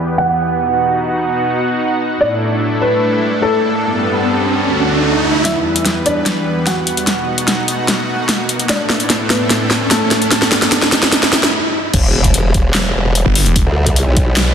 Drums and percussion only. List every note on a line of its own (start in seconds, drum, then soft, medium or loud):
5.45 snare soft
5.45 closed hi-hat medium
5.76 closed hi-hat medium
5.85 snare soft
5.85 closed hi-hat medium
6.06 closed hi-hat soft
6.26 snare soft
6.26 closed hi-hat medium
6.67 snare medium
6.67 closed hi-hat medium
6.87 closed hi-hat medium
6.97 closed hi-hat medium
7.07 snare medium
7.07 closed hi-hat medium
7.38 closed hi-hat medium
7.48 snare medium
7.48 closed hi-hat medium
7.68 closed hi-hat medium
7.88 snare medium
7.88 closed hi-hat medium
8.29 snare medium
8.29 closed hi-hat medium
8.49 closed hi-hat medium
8.59 closed hi-hat medium
8.69 snare medium
8.69 closed hi-hat medium
8.90 snare medium
9.00 closed hi-hat soft
9.10 snare medium
9.10 closed hi-hat medium
9.30 snare medium
9.30 closed hi-hat medium
9.50 snare medium
9.50 closed hi-hat medium
9.71 snare medium
9.91 snare medium
9.91 closed hi-hat medium
10.11 snare medium
10.11 closed hi-hat medium
10.22 closed hi-hat soft
10.31 snare medium
10.31 closed hi-hat medium
10.42 snare medium
10.52 snare loud
10.62 snare medium
10.62 closed hi-hat soft
10.72 snare loud
10.72 closed hi-hat medium
10.82 snare medium
10.92 snare loud
10.92 closed hi-hat medium
11.03 snare medium
11.12 snare loud
11.12 closed hi-hat medium
11.23 snare medium
11.33 snare loud
11.43 snare medium
11.94 kick loud
11.94 closed hi-hat medium
11.94 crash loud
12.24 kick medium
12.24 closed hi-hat medium
12.34 closed hi-hat medium
12.54 kick loud
12.54 closed hi-hat medium
12.75 snare loud
12.75 clap loud
12.75 closed hi-hat medium
13.15 closed hi-hat medium
13.35 open hi-hat medium
13.46 closed hi-hat medium
13.56 kick loud
13.56 closed hi-hat medium
13.87 kick medium
13.87 closed hi-hat medium
13.96 closed hi-hat medium
14.17 kick loud
14.17 closed hi-hat medium
14.37 snare loud
14.37 clap loud
14.37 closed hi-hat medium